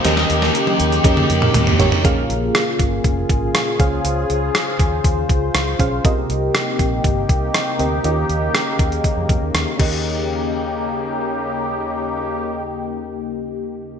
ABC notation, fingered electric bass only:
X:1
M:4/4
L:1/16
Q:1/4=120
K:Ebmix
V:1 name="Fingered electric bass" clef=bass
E,,2 E,,2 z2 E,,2 F,,2 F,,2 E,,2 =A,,, z | B,,,2 B,,,2 z2 G,,,2 F,,,2 A,,,2 z2 D,,2 | D,,2 D,,2 z2 E,,2 E,,2 D,,2 D,,2 _C,,2 | C,,2 C,,2 z2 B,,,2 G,,,2 C,,2 z2 =D,,2 |
E,,2 E,,2 z2 E,,2 z F,, F,, E,, E,, z E,,2- | E,,16- | E,,16 |]